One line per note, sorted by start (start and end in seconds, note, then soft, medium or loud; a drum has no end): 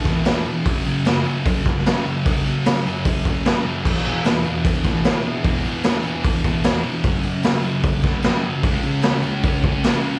0.04 0.23 E2 medium
0.04 0.25 B2 medium
0.04 0.25 E3 loud
0.04 kick loud
0.04 snare soft
0.04 tambourine medium
0.25 0.44 E2 medium
0.25 0.45 B2 medium
0.25 0.47 E3 medium
0.25 snare loud
0.25 open hi-hat medium
0.25 tambourine medium
0.45 0.64 E2 medium
0.45 0.65 B2 loud
0.45 0.66 E3 medium
0.45 tambourine soft
0.65 0.86 F#2 medium
0.65 0.86 C#3 loud
0.65 0.87 F#3 loud
0.65 kick loud
0.65 open hi-hat medium
0.65 tambourine soft
0.85 1.05 F#2 medium
0.85 1.06 C#3 loud
0.85 1.07 F#3 loud
0.85 tambourine medium
1.05 1.26 F#2 medium
1.05 1.26 C#3 medium
1.05 1.28 F#3 loud
1.05 snare loud
1.05 open hi-hat medium
1.05 tambourine medium
1.25 1.45 F#2 medium
1.25 1.46 C#3 medium
1.25 1.47 F#3 medium
1.25 tambourine medium
1.46 1.64 F#2 loud
1.46 1.66 C#3 loud
1.46 1.66 F#3 loud
1.46 kick loud
1.46 open hi-hat medium
1.46 tambourine medium
1.66 1.84 F#2 medium
1.66 1.85 C#3 loud
1.66 1.86 F#3 medium
1.66 kick medium
1.66 snare soft
1.66 tambourine medium
1.86 2.04 F#2 medium
1.86 2.06 C#3 medium
1.86 2.06 F#3 medium
1.86 snare loud
1.86 open hi-hat medium
1.86 tambourine loud
2.05 2.24 F#2 medium
2.05 2.26 C#3 medium
2.05 2.27 F#3 loud
2.05 tambourine soft
2.25 2.45 F#2 medium
2.25 2.46 C#3 loud
2.25 2.46 F#3 loud
2.25 kick loud
2.25 open hi-hat medium
2.36 tambourine soft
2.46 2.65 F#2 medium
2.46 2.66 C#3 loud
2.46 2.68 F#3 loud
2.46 tambourine medium
2.57 tambourine soft
2.66 2.85 F#2 medium
2.66 2.86 C#3 medium
2.66 2.87 F#3 medium
2.66 snare loud
2.66 open hi-hat medium
2.66 tambourine medium
2.77 tambourine soft
2.86 3.05 F#2 medium
2.86 3.06 C#3 medium
2.86 3.07 F#3 loud
2.86 tambourine medium
3.05 3.26 F#2 loud
3.05 3.27 C#3 loud
3.05 3.28 F#3 loud
3.05 kick loud
3.05 open hi-hat medium
3.05 tambourine medium
3.25 3.45 F#2 medium
3.25 3.46 C#3 medium
3.25 3.47 F#3 medium
3.25 kick loud
3.25 tambourine medium
3.36 tambourine soft
3.45 3.64 F#2 medium
3.45 3.66 C#3 medium
3.45 3.66 F#3 medium
3.45 snare loud
3.45 open hi-hat medium
3.45 tambourine medium
3.66 3.84 F#2 medium
3.66 3.85 C#3 medium
3.66 3.85 F#3 loud
3.75 tambourine soft
3.84 4.05 E2 loud
3.84 4.05 B2 loud
3.84 4.07 E3 loud
3.84 kick loud
3.84 crash loud
4.05 4.25 E2 medium
4.05 4.26 B2 medium
4.05 4.27 E3 medium
4.05 tambourine medium
4.24 4.45 E2 medium
4.24 4.46 B2 medium
4.24 4.47 E3 medium
4.24 snare loud
4.24 open hi-hat medium
4.24 tambourine medium
4.44 4.65 E2 medium
4.44 4.66 B2 medium
4.44 4.67 E3 loud
4.44 tambourine medium
4.64 4.85 E2 medium
4.64 4.85 B2 loud
4.64 4.86 E3 loud
4.64 kick loud
4.64 open hi-hat medium
4.64 tambourine medium
4.84 5.05 E2 medium
4.84 5.06 B2 medium
4.84 5.07 E3 medium
4.84 kick medium
4.84 snare soft
4.84 tambourine medium
5.04 5.24 E2 medium
5.04 5.26 B2 loud
5.04 snare loud
5.04 open hi-hat medium
5.04 tambourine medium
5.08 5.27 E3 medium
5.25 5.44 E2 medium
5.25 5.45 B2 medium
5.25 5.46 E3 medium
5.25 tambourine soft
5.44 5.64 E2 loud
5.44 5.65 B2 loud
5.44 5.66 E3 loud
5.44 kick loud
5.44 open hi-hat medium
5.44 tambourine soft
5.64 5.84 E2 medium
5.64 5.85 B2 loud
5.64 5.86 E3 loud
5.64 tambourine medium
5.83 6.03 E2 medium
5.83 6.04 B2 medium
5.83 6.05 E3 loud
5.83 snare loud
5.83 open hi-hat medium
5.83 tambourine medium
5.95 tambourine soft
6.03 6.24 E2 medium
6.03 6.25 B2 medium
6.03 6.26 E3 loud
6.03 tambourine medium
6.23 6.43 E2 medium
6.23 6.44 B2 loud
6.23 kick loud
6.23 open hi-hat medium
6.23 tambourine medium
6.27 6.45 E3 loud
6.44 6.62 E2 medium
6.44 6.64 B2 medium
6.44 6.65 E3 medium
6.44 kick medium
6.44 tambourine medium
6.63 6.82 E2 medium
6.63 6.84 B2 loud
6.63 6.84 E3 loud
6.63 snare loud
6.63 open hi-hat medium
6.63 tambourine medium
6.83 7.03 E2 medium
6.83 7.04 B2 medium
6.83 7.04 E3 loud
7.03 7.23 F#2 loud
7.03 7.24 C#3 loud
7.03 7.24 F#3 loud
7.03 kick loud
7.03 open hi-hat medium
7.03 tambourine soft
7.23 7.42 F#2 medium
7.23 7.44 C#3 loud
7.23 7.45 F#3 loud
7.23 tambourine medium
7.43 7.62 F#2 medium
7.43 7.63 C#3 loud
7.43 7.64 F#3 loud
7.43 snare loud
7.43 open hi-hat medium
7.43 tambourine medium
7.63 7.82 F#2 medium
7.63 7.84 C#3 loud
7.63 7.84 F#3 loud
7.63 tambourine medium
7.83 8.04 F#2 loud
7.83 8.04 C#3 loud
7.83 8.05 F#3 loud
7.83 kick loud
7.83 open hi-hat medium
7.83 tambourine medium
8.02 8.24 F#2 medium
8.02 8.25 C#3 loud
8.02 kick medium
8.02 snare soft
8.02 tambourine medium
8.06 8.26 F#3 loud
8.23 8.44 F#2 medium
8.23 8.45 C#3 medium
8.23 snare loud
8.23 open hi-hat medium
8.23 tambourine medium
8.27 8.46 F#3 medium
8.44 8.64 F#2 medium
8.44 8.64 C#3 medium
8.44 8.65 F#3 medium
8.44 tambourine soft
8.63 8.82 C#3 medium
8.63 8.84 G#3 loud
8.63 8.85 C#4 loud
8.63 kick loud
8.63 open hi-hat medium
8.73 tambourine soft
8.83 9.02 C#3 medium
8.83 9.04 G#3 loud
8.83 9.04 C#4 medium
8.83 tambourine medium
8.94 tambourine soft
9.02 9.22 C#3 medium
9.02 9.24 G#3 medium
9.02 9.25 C#4 medium
9.02 snare loud
9.02 open hi-hat medium
9.02 tambourine loud
9.23 9.43 C#3 medium
9.23 9.44 G#3 medium
9.23 9.45 C#4 loud
9.23 tambourine medium
9.43 9.64 C#3 loud
9.43 9.65 G#3 loud
9.43 9.65 C#4 loud
9.43 kick loud
9.43 open hi-hat medium
9.43 tambourine medium
9.54 tambourine soft
9.64 9.83 C#3 medium
9.64 9.84 G#3 medium
9.64 9.85 C#4 medium
9.64 kick loud
9.84 10.03 C#3 medium
9.84 10.05 G#3 medium
9.84 10.05 C#4 medium
9.84 snare loud
9.84 open hi-hat medium
9.84 tambourine loud
9.95 tambourine soft
10.04 10.19 C#3 medium
10.04 10.19 G#3 medium
10.04 10.19 C#4 medium
10.04 tambourine soft
10.14 tambourine soft